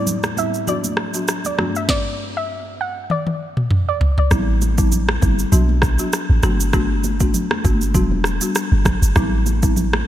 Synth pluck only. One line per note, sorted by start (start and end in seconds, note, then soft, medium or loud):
0.00 0.20 D5 medium
0.38 0.64 E5 medium
0.69 1.12 D5 medium
1.46 1.57 D5 medium
1.76 1.87 E5 medium
1.90 2.15 D5 medium
2.37 2.62 E5 medium
2.81 3.06 F#5 medium
3.11 3.55 D5 medium
3.89 4.00 D5 medium
4.19 4.30 D5 medium